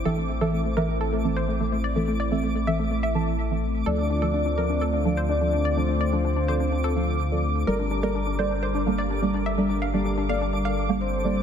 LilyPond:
<<
  \new Staff \with { instrumentName = "Synth texture" } { \time 4/4 \key d \minor \tempo 4 = 126 d'''1~ | d'''1 | d'''1~ | d'''1~ |
d'''1~ | d'''1 | }
  \new Staff \with { instrumentName = "Soft synth lead" } { \time 4/4 \key d \minor r1 | r1 | d''2. d''4 | c''2.~ c''8 r8 |
r1 | r2. c''4 | }
  \new Staff \with { instrumentName = "Synth stab" } { \time 4/4 \key d \minor <e c' a' e''>16 r8 <e c' a' e''>8 r16 <e c' a' e''>16 r8. <e c' a' a''>8 r16 <e c' a' e''>16 r8 | <e c' a' e''>16 r8 <e c' a' e''>8 r16 <e c' a' e''>16 r8. <e c' a' a''>8 r16 <e c' a' e''>16 r8 | <f c' a' d''>16 r8 <f c' a' d''>8 r16 <f c' a' d''>16 r8. <f c' a' f''>8 r16 <f c' a' d''>16 r8 | <f c' a' d''>16 r8 <f c' a' d''>8 r16 <f c' a' d''>16 r8. <f c' a' f''>8 r16 <f c' a' d''>16 r8 |
<g bes a' d''>16 r8 <g bes a' d''>8 r16 <g bes a' d''>16 r8. <g bes a' f''>8 r16 <g bes a' d''>16 r8 | <g bes a' d''>16 r8 <g bes a' d''>8 r16 <g bes a' d''>16 r4 <g bes a' f''>16 r8 <g bes a' d''>8 | }
  \new Staff \with { instrumentName = "Synth arpeggio sound" } { \time 4/4 \key d \minor a'16 a16 a16 a'16 a16 a16 bes'16 a16 a'16 a16 a16 c''16 a16 a16 a16 d''16 | a16 a16 d''16 a16 a16 a16 e''16 a16 a16 e''4. r16 | a'16 d'16 d'16 a'16 d'16 d'16 bes'16 d'16 a'16 d'16 d'16 c''16 d'16 d'16 d'16 d''16 | d'16 d'16 d''16 d'16 d'16 d'16 c''16 d'16 d'16 a'4. r16 |
bes'16 d'16 d'16 bes'16 d'16 d'16 c''16 d'16 c''16 d'16 d'16 d''16 d'16 d'16 d'16 e''16 | d'16 d'16 f''16 d'16 d'16 d'16 f''16 d'16 d'16 f''4. r16 | }
  \new Staff \with { instrumentName = "Analog synth pad" } { \time 4/4 \key d \minor << { e'1~ | e'1 | <d c' f'>1~ | <d c' f'>1 |
<g a' bes'>1~ | <g a' bes'>1 | } \\ { <a c'>1~ | <a c'>1~ | <a c'>1~ | <a c'>1 |
d'1~ | d'1 | } >> }
  \new Staff \with { instrumentName = "Analog synth bass" } { \clef bass \time 4/4 \key d \minor a,,1~ | a,,1 | d,1~ | d,1 |
g,,1~ | g,,1 | }
>>